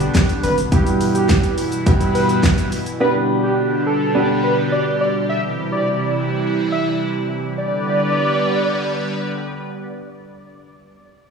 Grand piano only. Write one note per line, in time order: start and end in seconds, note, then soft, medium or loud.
0.00 0.37 B3 medium
0.00 0.37 D4 medium
0.00 0.37 G4 medium
0.72 1.51 G2 medium
0.72 1.51 B3 medium
0.72 1.51 E4 medium
0.72 1.51 G4 medium
1.86 2.65 G2 medium
1.86 2.66 B3 medium
1.86 2.66 E4 medium
1.86 2.66 G4 loud
3.00 3.80 B3 medium
3.00 3.80 D4 medium
3.00 3.80 G4 medium
4.15 4.94 B3 medium
4.15 4.94 D4 medium
4.15 4.94 G4 medium